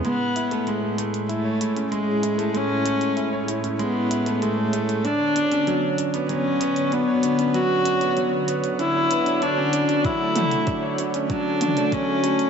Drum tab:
HH |x-xxx-xxx-xxx-xx|x-xxx-xxx-xxx-xx|x-xxx-xxx-xxx-xx|x-xxx-xxx-xxx-xx|
T2 |----------------|----------------|----------------|----------------|
BD |----------------|----------------|----------------|----------------|

HH |x-xxx-xxx-xxx-xx|
T2 |--o-------o-----|
BD |o---o---o---o---|